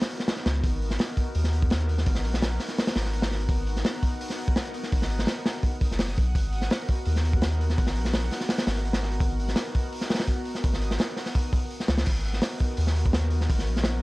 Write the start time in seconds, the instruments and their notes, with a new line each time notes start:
0.01 snare, open hi-hat
0.11 open hi-hat
0.20 snare
0.27 ambient pad B3 D#4 F#4 A#4, snare, open hi-hat
0.36 snare
0.46 sub bass C#2, snare, open hi-hat
0.63 sub bass G#1, ambient pad B3 D#4 F#4 A#4, synth texture F#5 F#6, kick, open hi-hat
0.82 open hi-hat
0.90 snare
0.99 snare, open hi-hat
1.17 kick, open hi-hat
1.35 sub bass D#2, open hi-hat
1.44 snare
1.53 open hi-hat
1.62 kick
1.70 ambient pad B3 D#4 F#4 A#4, snare, open hi-hat
1.80 closed hi-hat
1.89 open hi-hat
1.98 snare
2.06 sub bass G#1, ambient pad B3 D#4 F#4 A#4, kick, open hi-hat
2.15 snare
2.24 sub bass A#1, open hi-hat
2.34 snare
2.42 snare, open hi-hat
2.60 snare, open hi-hat
2.69 snare
2.78 snare, open hi-hat
2.87 snare, open hi-hat
2.96 sub bass G#1, snare, open hi-hat
3.05 snare
3.13 ambient pad B3 D#4 F#4 A#4, open hi-hat
3.22 snare, open hi-hat
3.31 snare
3.40 open hi-hat
3.49 sub bass G#1, ambient pad B3 D#4 F#4 A#4, synth texture D#6, kick, open hi-hat
3.67 open hi-hat
3.76 snare
3.84 snare, open hi-hat
4.03 kick, open hi-hat
4.21 open hi-hat
4.30 snare
4.38 open hi-hat
4.48 kick
4.56 ambient pad B3 D#4 F#4 A#4, snare, open hi-hat
4.65 closed hi-hat
4.74 open hi-hat
4.83 snare
4.92 sub bass G#1, ambient pad B3 D#4 F#4 A#4, kick, open hi-hat
5.02 snare
5.10 open hi-hat
5.19 snare
5.27 snare, open hi-hat
5.46 snare, open hi-hat
5.63 kick, open hi-hat
5.81 kick, open hi-hat
5.91 sub bass F#1, snare
5.99 snare, open hi-hat
6.08 snare
6.16 sub bass B1, kick, open hi-hat
6.35 sub bass G#1, ambient pad B3 D#4 F#4 A#4, synth texture F#6, kick, open hi-hat
6.53 open hi-hat
6.62 snare
6.70 snare, open hi-hat
6.88 kick, open hi-hat
7.05 sub bass D#2, open hi-hat
7.16 snare
7.25 open hi-hat
7.33 kick
7.42 ambient pad B3 D#4 F#4 A#4, snare, open hi-hat
7.52 closed hi-hat
7.61 open hi-hat
7.70 snare
7.77 sub bass G#1, ambient pad B3 D#4 F#4 A#4, kick, open hi-hat
7.87 snare
7.96 sub bass A#1, open hi-hat
8.05 snare
8.13 snare, open hi-hat
8.31 snare, open hi-hat
8.41 snare
8.49 snare, open hi-hat
8.58 snare, open hi-hat
8.67 sub bass G#1, snare, open hi-hat
8.76 snare
8.85 ambient pad B3 D#4 F#4 A#4, open hi-hat
8.93 snare, open hi-hat
9.03 snare
9.12 open hi-hat
9.20 sub bass G#1, ambient pad B3 D#4 F#4 A#4, synth texture D#6, kick, open hi-hat
9.40 open hi-hat
9.48 snare
9.56 snare, open hi-hat
9.75 kick, open hi-hat
9.93 open hi-hat
10.01 snare
10.10 snare, open hi-hat
10.14 snare, open hi-hat
10.19 snare, open hi-hat
10.27 ambient pad B3 D#4 F#4 A#4, kick, open hi-hat
10.45 open hi-hat
10.55 snare
10.64 sub bass G#1, ambient pad B3 D#4 F#4 A#4, kick, open hi-hat
10.73 snare
10.81 open hi-hat
10.91 snare
10.99 snare, open hi-hat
11.16 snare, open hi-hat
11.26 snare
11.35 kick, open hi-hat
11.52 kick, open hi-hat
11.71 open hi-hat
11.80 snare
11.88 sub bass C#2, snare, open hi-hat
11.98 snare, open hi-hat
12.06 sub bass G#1, ambient pad B3 D#4 F#4 A#4, kick, open hi-hat, crash
12.25 open hi-hat
12.33 snare
12.42 snare, open hi-hat
12.59 kick, open hi-hat
12.77 sub bass D#2, open hi-hat
12.87 snare
12.96 open hi-hat
13.06 kick
13.13 ambient pad B3 D#4 F#4 A#4, snare, open hi-hat
13.22 closed hi-hat
13.30 open hi-hat
13.41 snare
13.49 sub bass G#1, ambient pad B3 D#4 F#4 A#4, kick, open hi-hat
13.59 snare
13.67 sub bass A#1, open hi-hat
13.77 snare
13.84 snare, open hi-hat